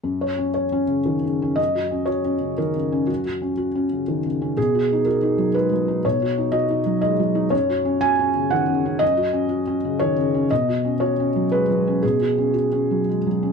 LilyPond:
\new Staff \with { instrumentName = "Felt piano" } { \time 3/4 \key fis \major \tempo 4 = 121 << { r2. | dis''4 cis''4 ais'4 | fis'2~ fis'8 r8 | gis'4 ais'4 b'4 |
cis''4 dis''4 dis''4 | cis''4 gis''4 fis''4 | dis''2 cis''4 | dis''4 cis''4 b'4 |
gis'4 fis'4 r4 | } \\ { \tuplet 3/2 { fis,8 cis''8 cis'8 cis''8 cis'8 cis8 dis8 cis8 cis'8 } | \tuplet 3/2 { fis,8 fis'8 cis'8 fis'8 cis'8 cis8 dis8 cis8 cis'8 } | \tuplet 3/2 { fis,8 fis'8 cis'8 fis'8 cis'8 cis8 dis8 cis8 cis'8 } | \tuplet 3/2 { b,8 fis'8 dis'8 fis'8 dis'8 fis8 gis8 fis8 dis'8 } |
\tuplet 3/2 { b,8 fis'8 dis'8 fis'8 dis'8 fis8 gis8 fis8 dis'8 } | \tuplet 3/2 { fis,8 fis'8 cis'8 fis'8 cis'8 cis8 dis8 cis8 cis'8 } | \tuplet 3/2 { fis,8 fis'8 cis'8 fis'8 cis'8 cis8 dis8 cis8 cis'8 } | \tuplet 3/2 { b,8 fis'8 cis'8 fis'8 cis'8 fis8 gis8 fis8 cis'8 } |
\tuplet 3/2 { b,8 fis'8 cis'8~ cis'8 cis'8 fis8 gis8 fis8 cis'8 } | } >> }